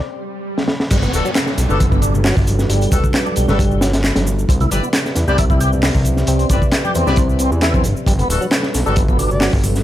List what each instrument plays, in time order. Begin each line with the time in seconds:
0.01 swell
0.58 snare
0.68 snare
0.80 snare
0.90 analog synth bass G1, analog synth pad G3 D4 F#4 A4 B4, tonewheel organ G3, kick, closed hi-hat, crash, downlifter, muted conga, shaker
1.02 tonewheel organ B3, closed hi-hat, low conga, shaker
1.13 analog synth bass D1, horn section B3 D4 F#4 A4, closed hi-hat, muted conga, shaker
1.25 tonewheel organ F#3, shaker
1.35 snare, clap, closed hi-hat, shaker
1.47 snare, shaker
1.58 analog synth bass B1, snare, closed hi-hat, shaker
1.69 analog synth bass G1, horn section B3 D4 F#4 A4, tonewheel organ D4, low conga, shaker
1.80 tonewheel organ B3, kick, closed hi-hat, muted conga, shaker
1.91 tonewheel organ B3, kick, muted conga, shaker
2.02 tonewheel organ D4, closed hi-hat, shaker
2.14 low conga, shaker
2.24 tonewheel organ F#3, snare, clap, open hi-hat, shaker
2.37 analog synth bass G1, kick, shaker
2.47 closed hi-hat, high conga, shaker
2.59 snare, shaker
2.70 analog synth bass G1, tonewheel organ G3, closed hi-hat, muted conga, shaker
2.81 closed hi-hat, shaker
2.92 analog synth bass D1, tonewheel organ G3, horn section B3 D4 F#4 A4, kick, closed hi-hat, muted conga, shaker
3.04 kick, shaker
3.14 snare, clap, closed hi-hat, shaker
3.26 tonewheel organ D4, high conga, shaker
3.36 analog synth bass B1, tonewheel organ G3, closed hi-hat, shaker
3.48 analog synth bass G1, horn section B3 D4 F#4 A4, snare, low conga, shaker
3.59 tonewheel organ G3, kick, closed hi-hat, shaker
3.71 shaker
3.81 tonewheel organ F#3, snare, closed hi-hat, shaker
3.93 snare, closed hi-hat, shaker
4.04 snare, clap, closed hi-hat, shaker
4.16 analog synth bass G1, snare, closed hi-hat, high conga, shaker
4.27 shaker
4.39 muted conga, shaker
4.49 analog synth bass C2, analog synth pad C4 G4 B4 D5 E5, tonewheel organ C4, kick, closed hi-hat, muted conga, shaker
4.60 tonewheel organ E4, closed hi-hat, low conga, shaker
4.71 analog synth bass G1, horn section E4 G4 B4 D5, closed hi-hat, muted conga, shaker
4.83 tonewheel organ B3, shaker
4.93 snare, clap, closed hi-hat, shaker
5.06 snare, shaker
5.15 analog synth bass E2, snare, closed hi-hat, shaker
5.28 analog synth bass C2, horn section E4 G4 B4 D5, tonewheel organ G4, low conga, shaker
5.38 tonewheel organ E4, kick, closed hi-hat, muted conga, shaker
5.50 tonewheel organ E4, kick, muted conga, shaker
5.61 tonewheel organ G4, closed hi-hat, shaker
5.73 low conga, shaker
5.83 tonewheel organ B3, snare, clap, open hi-hat, shaker
5.95 analog synth bass C2, kick, shaker
6.05 closed hi-hat, high conga, shaker
6.17 snare, shaker
6.27 analog synth bass C2, tonewheel organ C4, closed hi-hat, muted conga, shaker
6.39 closed hi-hat, shaker
6.49 analog synth bass G1, tonewheel organ C4, horn section E4 G4 B4 D5, kick, closed hi-hat, muted conga, shaker
6.62 kick, shaker
6.72 snare, clap, closed hi-hat, shaker
6.84 tonewheel organ G4, high conga, shaker
6.95 analog synth bass E2, tonewheel organ C4, closed hi-hat, shaker
7.07 analog synth bass C2, horn section E4 G4 B4 D5, snare, low conga, shaker
7.16 tonewheel organ C4, kick, closed hi-hat, shaker
7.29 shaker
7.39 tonewheel organ C4, closed hi-hat, shaker
7.52 analog synth bass E2, shaker
7.62 tonewheel organ E4, snare, clap, closed hi-hat, shaker
7.74 tonewheel organ C4, kick, high conga, shaker
7.84 analog synth bass G1, closed hi-hat, shaker
7.96 muted conga, shaker
8.07 analog synth bass G1, tonewheel organ G3, analog synth pad G3 D4 F#4 A4, kick, closed hi-hat, muted conga, shaker
8.19 tonewheel organ B3, closed hi-hat, low conga, shaker
8.29 analog synth bass D1, horn section B3 D4 F#4 A4, closed hi-hat, open hi-hat, muted conga, shaker
8.41 tonewheel organ F#3, shaker
8.51 snare, clap, closed hi-hat, shaker
8.63 snare, shaker
8.74 analog synth bass B1, snare, closed hi-hat, open hi-hat, shaker
8.86 analog synth bass G1, horn section B3 D4 F#4 A4, tonewheel organ D4, low conga, shaker
8.96 tonewheel organ B3, kick, closed hi-hat, muted conga, shaker
9.08 tonewheel organ B3, kick, muted conga, shaker
9.19 tonewheel organ D4, closed hi-hat, open hi-hat, shaker
9.31 soft synth lead D5, low conga, shaker
9.41 tonewheel organ F#3, snare, clap, open hi-hat, shaker
9.53 analog synth bass G1, kick, shaker
9.64 closed hi-hat, open hi-hat, high conga, shaker
9.76 snare, open hi-hat, shaker